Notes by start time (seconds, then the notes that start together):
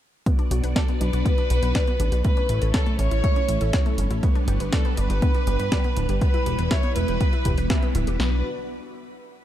0.26 B3 D4 F#4 D5, kick, closed hi-hat
0.39 D4, closed hi-hat
0.51 B1 F#4, closed hi-hat
0.63 B1 B4, closed hi-hat
0.76 A4 D5, kick, snare, closed hi-hat
0.88 B3, closed hi-hat
1.01 B1 D4 B4, closed hi-hat
1.13 B1 F#4, closed hi-hat
1.26 B3, kick, closed hi-hat
1.38 D4, closed hi-hat
1.50 B1 F#4, closed hi-hat
1.63 B1 B4, closed hi-hat
1.75 D5, kick, snare, closed hi-hat
1.87 B3, closed hi-hat
2.00 A1 D4, closed hi-hat
2.12 B1 F#4, closed hi-hat
2.24 A3 C#4 E4 B4 C#5, kick, closed hi-hat
2.37 C#4, closed hi-hat
2.49 A1 E4, closed hi-hat
2.62 A1 A4, closed hi-hat
2.74 A4 C#5, kick, snare, closed hi-hat
2.86 A3, closed hi-hat
2.99 A1 C#4 C#5, closed hi-hat
3.11 A1 E4, closed hi-hat
3.24 A3, kick, closed hi-hat
3.36 C#4, closed hi-hat
3.48 A1 E4, closed hi-hat
3.61 A1 A4, closed hi-hat
3.73 C#5, kick, snare, closed hi-hat
3.86 A3, closed hi-hat
3.98 G1 C#4, closed hi-hat
4.10 A1 E4, closed hi-hat
4.23 G3 B3 D4 B4, kick, closed hi-hat
4.35 D4, closed hi-hat
4.48 G1 G4, closed hi-hat
4.60 G1 B4, closed hi-hat
4.73 A4 D5, kick, snare, closed hi-hat
4.85 B3, closed hi-hat
4.97 G1 D4 B4, closed hi-hat
5.10 G1 G4, closed hi-hat
5.22 B3, kick, closed hi-hat
5.34 D4, closed hi-hat
5.47 G1 G4, closed hi-hat
5.59 G1 B4, closed hi-hat
5.72 D5, kick, snare, closed hi-hat
5.84 B3, closed hi-hat
5.97 D1 D4, closed hi-hat
6.09 G1 G4, closed hi-hat
6.21 B3 E4 B4, kick, closed hi-hat
6.34 E4, closed hi-hat
6.46 E1 G4, closed hi-hat
6.59 E1 B4, closed hi-hat
6.71 C#5 E5, kick, snare, closed hi-hat
6.83 B3, closed hi-hat
6.96 E1 E4 B4, closed hi-hat
7.08 E1 G4, closed hi-hat
7.21 B3, kick, closed hi-hat
7.33 E4, closed hi-hat
7.45 E1 G4, kick, closed hi-hat
7.58 E1 B4, closed hi-hat
7.70 E5, kick, snare, closed hi-hat
7.83 B3, closed hi-hat
7.95 D1 E4, closed hi-hat
8.07 E1 G4, closed hi-hat
8.20 B1 B3 D4 F#4 B4 D5, snare